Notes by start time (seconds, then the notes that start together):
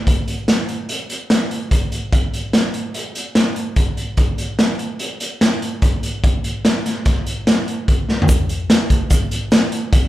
0.07 kick, closed hi-hat
0.28 closed hi-hat
0.48 snare, closed hi-hat
0.69 closed hi-hat
0.89 closed hi-hat
1.09 closed hi-hat
1.30 snare, closed hi-hat
1.51 closed hi-hat
1.71 kick, closed hi-hat
1.92 closed hi-hat
2.13 kick, closed hi-hat
2.33 closed hi-hat
2.53 snare, closed hi-hat
2.74 closed hi-hat
2.94 closed hi-hat
3.15 closed hi-hat
3.35 snare, closed hi-hat
3.56 closed hi-hat
3.76 kick, closed hi-hat
3.97 closed hi-hat
4.17 kick, closed hi-hat
4.38 closed hi-hat
4.59 snare, closed hi-hat
4.79 closed hi-hat
4.99 closed hi-hat
5.20 closed hi-hat
5.41 snare, closed hi-hat
5.62 closed hi-hat
5.82 kick, closed hi-hat
6.03 closed hi-hat
6.24 kick, closed hi-hat
6.44 closed hi-hat
6.65 snare, closed hi-hat
6.86 snare, closed hi-hat
7.05 kick, snare, closed hi-hat
7.26 closed hi-hat
7.47 snare, closed hi-hat
7.68 closed hi-hat
7.88 kick, closed hi-hat
8.09 snare
8.22 floor tom
8.29 kick, closed hi-hat, shaker
8.49 closed hi-hat
8.70 snare, closed hi-hat
8.90 kick, closed hi-hat
9.10 kick, closed hi-hat, shaker
9.31 closed hi-hat
9.52 snare, closed hi-hat, shaker
9.72 closed hi-hat
9.93 kick, closed hi-hat